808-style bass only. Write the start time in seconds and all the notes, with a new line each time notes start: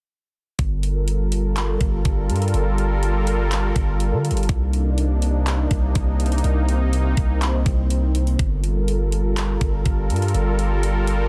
0.59 G1
1.81 G1
2.05 G1
2.30 G2
2.54 G1
3.76 G1
4.12 D3
4.31 G1
4.49 C2
5.71 C2
5.96 C2
6.44 C2
7.17 C2
7.66 C2
8.39 G1
9.61 G1
9.86 G1
10.10 G2
10.34 G1